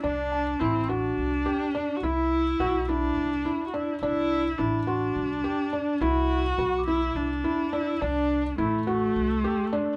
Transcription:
<<
  \new Staff \with { instrumentName = "Celesta" } { \time 7/8 \key d \mixolydian \tempo 4 = 105 r8 a''4~ a''16 r4. r16 | r2. r8 | r4. c'''4~ c'''16 r8. | r4 b''16 d'''16 e'''4~ e'''16 r8. |
r2. r8 | }
  \new Staff \with { instrumentName = "Felt piano" } { \time 7/8 \key d \mixolydian d'4 e'8 fis'4 g'8 d'8 | e'4 fis'8 e'4 e'8 d'8 | d'4 e'8 fis'4 g'8 d'8 | e'4 fis'8 e'4 e'8 d'8 |
d'4 e'8 fis'4 g'8 d'8 | }
  \new Staff \with { instrumentName = "Viola" } { \time 7/8 \key d \mixolydian d'4 c'8 d'4.~ d'16. fis'32 | e'4. d'4~ d'16. fis'32 e'8 | e'4 d'2~ d'8 | fis'4. e'8 d'4 e'8 |
d'4 a2~ a8 | }
  \new Staff \with { instrumentName = "Upright bass" } { \clef bass \time 7/8 \key d \mixolydian c,4 a,,4 c,8 r4 | c,4 b,,4 c,8 r4 | c,4 a,,4 c,8 r4 | c,4 b,,4 c,8 r4 |
c,4 a,,4 c,8 r4 | }
>>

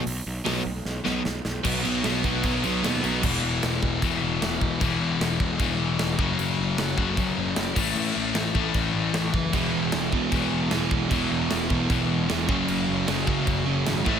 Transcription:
<<
  \new Staff \with { instrumentName = "Overdriven electric guitar" } { \clef bass \time 4/4 \key b \mixolydian \tempo 4 = 152 r4 <b, fis b>8 r4 <b, fis b>8 r4 | <b, fis b>8 <b, fis b>8 <b, fis b>8 <b, fis b>8 <b, fis b>8 <b, fis b>8 <b, fis b>8 <b, fis b>8 | <e, b, e>2 <e, b, e>2 | <e, b, e>2 <e, b, e>4. <fis, cis fis>8~ |
<fis, cis fis>4. <fis, cis fis>2 <a, e a>8~ | <a, e a>4. <a, e a>2 r8 | <e, b, e>2 <e, b, e>2 | <e, b, e>2 <e, b, e>4. <fis, cis fis>8~ |
<fis, cis fis>4. <fis, cis fis>2 <a, e a>8 | }
  \new Staff \with { instrumentName = "Overdriven electric guitar" } { \clef bass \time 4/4 \key b \mixolydian r4 <b, fis b>8 r4 <b, fis b>8 r4 | <b, fis b>8 <b, fis b>8 <b, fis b>8 <b, fis b>8 <b, fis b>8 <b, fis b>8 <b, fis b>8 <b, fis b>8 | r1 | r1 |
r1 | r1 | <e, b, e>4. <e, b, e>4. <e, b, e>4 | <e, b, e>4. <e, b, e>4. <e, b, e>8 <fis, cis fis>8~ |
<fis, cis fis>4 <fis, cis fis>4. <fis, cis fis>4 <a, e a>8 | }
  \new Staff \with { instrumentName = "Distorted electric guitar" } { \clef bass \time 4/4 \key b \mixolydian r1 | <b, fis b>2 <b, fis b>2 | <e, b, e>1 | <e, b, e>2.~ <e, b, e>8 <fis, cis fis>8~ |
<fis, cis fis>2.~ <fis, cis fis>8 <a, e a>8~ | <a, e a>2.~ <a, e a>8 r8 | <e, b, e>1 | <e, b, e>2.~ <e, b, e>8 <fis, cis fis>8~ |
<fis, cis fis>2.~ <fis, cis fis>8 <a, e a>8 | }
  \new Staff \with { instrumentName = "Picked electric bass" } { \clef bass \time 4/4 \key b \mixolydian b,,8 b,,8 b,,8 b,,8 b,,8 b,,8 b,,8 b,,8 | b,,8 b,,8 b,,8 b,,8 b,,8 b,,8 dis,8 b,,8 | e,,8 e,,8 e,,8 e,,8 e,,8 e,,8 e,,8 e,,8 | e,,8 e,,8 e,,8 e,,8 e,,8 e,,8 e,,8 fis,,8 |
fis,,8 fis,,8 fis,,8 fis,,8 fis,,8 fis,,8 fis,,8 a,,8 | a,,8 a,,8 a,,8 a,,8 a,,8 a,,8 a,,8 fis,,8 | e,,8 e,,8 e,,8 e,,8 e,,8 e,,8 e,,8 e,,8 | e,,8 e,,8 e,,8 e,,8 e,,8 e,,8 e,,8 fis,,8 |
fis,,8 fis,,8 fis,,8 fis,,8 fis,,8 fis,,8 gis,,8 a,,8 | }
  \new DrumStaff \with { instrumentName = "Drums" } \drummode { \time 4/4 hho4 <hho sn>4 sn8 sn8 sn8 sn8 | <cymc bd>8 cymc8 <cymc sn>8 <cymc bd>8 <cymc bd>8 cymc8 <cymc sn>8 cymc8 | <cymc bd>4 <cymc sn>8 bd8 <cymc bd>4 <cymc sn>8 bd8 | <cymc bd>4 <cymc sn>8 bd8 <cymc bd>4 <cymc sn>8 bd8 |
cymc4 <cymc sn>8 bd8 <cymc bd>4 <cymc sn>8 <cymc bd>8 | cymc4 <cymc sn>8 bd8 <cymc bd>4 <cymc sn>8 bd8 | <cymc bd>4 <cymc sn>8 bd8 <cymc bd>4 <cymc sn>8 bd8 | <cymc bd>4 <cymc sn>8 bd8 <cymc bd>4 <cymc sn>8 bd8 |
cymc4 <cymc sn>8 bd8 <cymc bd>4 <cymc sn>8 bd8 | }
>>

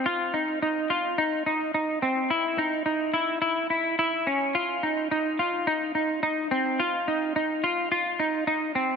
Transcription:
\new Staff \with { instrumentName = "Clean electric guitar" } { \time 4/4 \key c \phrygian \tempo 4 = 107 f'8 ees'8 ees'8 f'8 ees'8 ees'8 ees'8 c'8 | fes'8 ees'8 ees'8 fes'8 fes'8 fes'8 fes'8 des'8 | f'8 ees'8 ees'8 f'8 ees'8 ees'8 ees'8 c'8 | f'8 ees'8 ees'8 f'8 f'8 ees'8 ees'8 c'8 | }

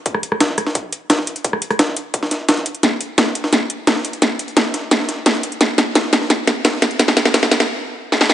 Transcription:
\new DrumStaff \with { instrumentName = "Drums" } \drummode { \time 4/4 \tempo 4 = 173 <hh bd>16 ss16 hh16 ss16 <hh bd sn>8 <hh ss>16 sn16 <hh bd>8 hh8 <hh bd sn>16 sn16 hh16 hh16 | <hh bd>16 ss16 hh16 <hh ss>16 <hh bd sn>8 hh8 <hh bd>16 sn16 <hh sn>8 <hh bd sn>16 hh16 hh16 hh16 | <hh bd sn>8 hh8 <hh bd sn>8 hh16 sn16 <hh bd sn>8 hh8 <hh bd sn>16 sn16 hh16 hh16 | <hh bd sn>8 hh16 hh16 <hh bd sn>8 <hh sn>8 <hh bd sn>16 sn16 <hh sn>8 <hh bd sn>16 hh16 hh16 hh16 |
<hh bd sn>8 <hh sn>8 <hh bd sn>8 <hh sn>16 sn16 <hh bd sn>8 <hh sn>8 <hh bd sn>16 sn16 <hh sn>16 hh16 | <hh bd sn>16 sn16 <hh sn>16 <hh sn>16 <hh bd sn>16 sn16 <hh sn>16 <hh sn>16 r4 r16 sn16 sn16 sn16 | }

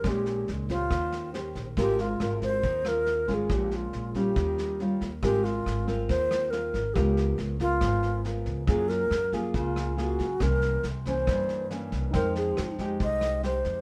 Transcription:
<<
  \new Staff \with { instrumentName = "Tine electric piano" } { \time 4/4 \key aes \major \tempo 4 = 139 r1 | r1 | r1 | r1 |
r1 | r1 | r1 | <ees' c'' g''>1 | }
  \new Staff \with { instrumentName = "Alto flute" } { \time 4/4 \key aes \major g'4 r8 f'4. r4 | g'8 f'4 c''4 bes'4 aes'8 | g'8 f'4 g'4. r4 | g'8 f'4 r8 c''4 bes'4 |
g'4 r8 f'4. r4 | aes'8 bes'4 r8 f'4 ges'4 | bes'4 r8 c''4. r4 | bes'8 aes'4 r8 ees''4 c''4 | }
  \new Staff \with { instrumentName = "Nylon-string guitar" } { \time 4/4 \key aes \major << { <aes des' ees'>4. <des' g' c''>4. <des' g' c''>8 r8 | <c' f' bes'>8 r8 <c' f' bes'>4. <c' f' bes'>4 <aes des' f'>8~ | <aes des' f'>4. <g des' f'>4. <g des' f'>8 r8 | <c' f' bes'>4. <c' f' bes'>4. <c' f' bes'>8 r8 |
<ces' f' bes'>4. <ces' f' bes'>4. <ces' f' bes'>4 | <bes f' aes'>4 r8 <bes f' aes'>4. <bes f' aes'>8 r8 | <e bes des'>4 r8 <e bes des'>4. <e bes des'>4 | <aes ees'>4. <aes ees' g'>4. <aes ees' g'>4 | } \\ { bes,2 ees2 | aes2 ees2 | bes,2 ees2 | aes2 ees2 |
des2 aes,2 | ges2 des2 | c2 g,2 | f2 c2 | } >> }
  \new Staff \with { instrumentName = "Upright bass" } { \clef bass \time 4/4 \key aes \major bes,,4 des,4 ees,4. bes,,8 | aes,,4 aes,,4 ees,4. aes,,8 | bes,,4 bes,,4 ees,4. ees,8 | aes,,4 aes,,4 ees,4. aes,,8 |
des,4 des,4 aes,,4. des,8 | ges,4 ges,4 des,4. ges,8 | c,4 c,4 g,4. c,8 | f,4 f,4 c,4. f,8 | }
  \new DrumStaff \with { instrumentName = "Drums" } \drummode { \time 4/4 <bd ss sn>8 sn8 sn8 <bd sn>8 <bd ss sn>8 sn8 sn8 <bd sn>8 | <bd ss sn>8 sn8 <ss sn>8 <bd sn>8 <bd sn>8 <ss sn>8 sn8 <bd sn>8 | <bd ss sn>8 sn8 sn8 <bd sn>8 <bd ss sn>8 sn8 sn8 <bd sn>8 | <bd ss sn>8 sn8 <ss sn>8 <bd sn>8 <bd sn>8 <ss sn>8 sn8 <bd sn>8 |
<bd ss sn>8 sn8 sn8 <bd sn>8 <bd ss sn>8 sn8 sn8 <bd sn>8 | <bd ss sn>8 sn8 <ss sn>8 <bd sn>8 <bd sn>8 <ss sn>8 sn8 <bd sn>8 | <bd ss sn>8 sn8 sn8 <bd sn>8 <bd ss sn>8 sn8 sn8 <bd sn>8 | <bd ss sn>8 sn8 <ss sn>8 <bd sn>8 <bd sn>8 <ss sn>8 sn8 <bd sn>8 | }
>>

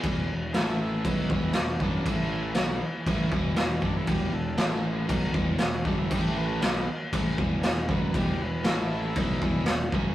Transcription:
<<
  \new Staff \with { instrumentName = "Transistor combo organ" } { \time 4/4 \key a \major \tempo 4 = 118 r4 <gis' a'>8 a'8 e'8 e'8 d'8 d'8 | a4 r2 r8 <cis' d'>16 e'16 | g'8 a'4 r2 <cis' d'>16 e'16 | g'8 b'4 r2 b'8 |
g'8 b'8 a'4 r2 | }
  \new Staff \with { instrumentName = "Transistor combo organ" } { \time 4/4 \key a \major r4 e'8 e'8 b8 b8 b8 b8 | e2. r4 | r1 | r1 |
r4 e'2 r4 | }
  \new Staff \with { instrumentName = "Overdriven electric guitar" } { \clef bass \time 4/4 \key a \major <e, b, e>8 <e, b,>8 <a, e a>4 <b, fis b>8 <e, b, e>8 <e, b,>8 <fis, cis fis>8 | <a, e a>4 <b, fis b>8 r8 <a, e a>8 <e, b, e>4 <fis, cis fis>8 | <e, b, e>8 <e, b,>8 <a, e a>4 <b, fis b>8 <e, b, e>8 <e, b,>8 <fis, cis fis>8 | <a, e a>4 <b, fis b>8 r8 <a, e a>8 <e, b, e>4 <fis, cis fis>8 |
<e, b, e>8 <e, b,>8 <a, e a>4 <b, fis b>8 <e, b, e>8 <e, b,>8 <fis, cis fis>8 | }
  \new Staff \with { instrumentName = "Picked electric bass" } { \clef bass \time 4/4 \key a \major e,,8 e,,8 a,,4 b,,8 e,,8 e,,8 fis,,8 | a,,4 b,,8 r8 a,,8 e,,4 fis,,8 | e,,8 e,,8 a,,4 b,,8 e,,8 e,,8 fis,,8 | a,,4 b,,8 r8 a,,8 e,,4 fis,,8 |
e,,8 e,,8 a,,4 b,,8 e,,8 e,,8 fis,,8 | }
  \new DrumStaff \with { instrumentName = "Drums" } \drummode { \time 4/4 <cymc bd>4 <cymc sn>4 <cymc bd>8 bd8 <cymc sn>8 bd8 | <cymc bd>4 <cymc sn>4 <cymc bd>8 bd8 <cymc sn>8 bd8 | <cymc bd>4 <cymc sn>4 <cymc bd>8 bd8 <cymc sn>8 bd8 | <cymc bd>4 <cymc sn>4 <cymc bd>8 bd8 <cymc sn>8 bd8 |
<cymc bd>4 <cymc sn>4 <cymc bd>8 bd8 <cymc sn>8 bd8 | }
>>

